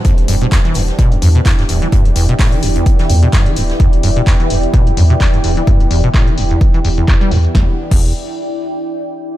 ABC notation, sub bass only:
X:1
M:4/4
L:1/16
Q:"Swing 16ths" 1/4=128
K:Em
V:1 name="Sub bass" clef=bass
z E,,, E,,, z3 E,,, z3 E,, z3 D,,, z | z E,,, E,,, z3 E,,, z3 E,, z3 D,,, z | z E,,, E,,, z3 E,,, z3 E,, z3 D,,, z | z E,,, E,,, z3 E,,, z3 E,,, z3 E,, z |
E,,, z2 E,,,2 z8 z3 |]